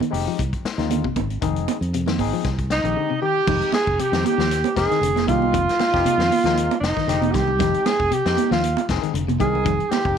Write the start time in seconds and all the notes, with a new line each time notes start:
0.00 D#3, closed hi-hat, high conga
0.11 F1 G#3 C4 D#4 G4, open hi-hat
0.28 F3
0.39 C2, kick, closed hi-hat, high conga
0.53 kick, closed hi-hat
0.65 muted fingered electric bass stroke, snare, closed hi-hat
0.77 D#2 D#3 G#3 C4 D#4 F4, snare, closed hi-hat
0.90 D3, closed hi-hat, high conga
1.04 C3, kick
1.16 G#1 D#3, kick, closed hi-hat, high conga
1.30 closed hi-hat
1.41 F1 D#3 G#3 C4 D#4 G#4, kick, closed hi-hat, high conga
1.56 closed hi-hat
1.68 closed hi-hat, high conga
1.81 F2, closed hi-hat
1.94 C3, closed hi-hat, high conga
2.06 D#3, snare, closed hi-hat, high conga
2.18 G#1 G#3 C4 D#4 G#4, kick, open hi-hat, high conga
2.33 F3
2.44 C2, kick, snare, closed hi-hat, high conga
2.58 kick, closed hi-hat
2.70 D#4, snare, closed hi-hat
2.84 A#1 D#3 G#3 C4 D#4 G4, closed hi-hat
2.97 D3
3.10 C3
3.22 D#3 G4
3.47 F1 D#3 G#3 C4 D#4 G4, kick, crash, low conga
3.62 closed hi-hat
3.72 G#4, muted fingered electric bass stroke, snare, closed hi-hat, high conga
3.87 F1, kick
3.99 C3 G4, closed hi-hat
4.12 F2 D#3 G#3 C4 D#4 G4, snare, closed hi-hat
4.24 G4, closed hi-hat, high conga
4.38 D#2 F3, snare, closed hi-hat
4.51 snare, closed hi-hat
4.64 closed hi-hat, high conga
4.76 F1 G#3 C4 D#4 G#4 A#4, kick, snare, closed hi-hat
4.91 D#3, snare, closed hi-hat
5.01 F1 D3, closed hi-hat
5.16 C3, snare, closed hi-hat, high conga
5.27 C2 D#3 G#3 C4 D#4 F4 G4, kick, closed hi-hat, high conga, low conga
5.42 high conga, low conga
5.53 F1 D#3, kick, closed hi-hat, low conga
5.69 snare, closed hi-hat
5.79 muted fingered electric bass stroke, snare, closed hi-hat, high conga
5.92 F1 G#3 C4 D#4 G4, kick, snare
6.05 C3, closed hi-hat, high conga
6.18 F2 D#3, snare, closed hi-hat
6.31 open hi-hat, high conga
6.44 D#2 F3 G#3 C4 D#4 A#4, snare, closed hi-hat
6.57 closed hi-hat
6.71 closed hi-hat, high conga
6.80 F1 D#4, snare, closed hi-hat
6.97 D#3, muted fingered electric bass stroke, kick, snare
7.08 F1 D3 G#3 C4 D#4 G4, snare, closed hi-hat
7.22 C3, closed hi-hat, high conga
7.32 C2 D#3 G4, kick, snare, closed hi-hat, low conga
7.36 G4
7.48 low conga
7.59 F1 D#3 G#3 C4 D#4 G4, kick, snare, closed hi-hat, low conga
7.74 closed hi-hat
7.85 G#4, muted fingered electric bass stroke, snare, closed hi-hat, high conga
8.00 F1, kick
8.11 C3 G4, closed hi-hat
8.25 F2 G#3 C4 D#4 G4, snare, closed hi-hat
8.37 closed hi-hat, high conga
8.51 D#2 F3 F4, snare, closed hi-hat
8.64 closed hi-hat
8.77 closed hi-hat, high conga
8.89 F1 G#3 C4 D#4 G#4, kick, snare, closed hi-hat
9.02 D#3, muted fingered electric bass stroke, closed hi-hat
9.14 F1 D3, closed hi-hat
9.28 C3, closed hi-hat, high conga
9.40 C2 D#3 G#3 C4 D#4 G#4 A#4, kick, closed hi-hat, low conga
9.55 low conga
9.65 F1 D#3, kick, closed hi-hat, low conga
9.80 closed hi-hat
9.89 G4, muted fingered electric bass stroke, snare, closed hi-hat, high conga
10.05 F1 G#3 C4 D#4 G4, kick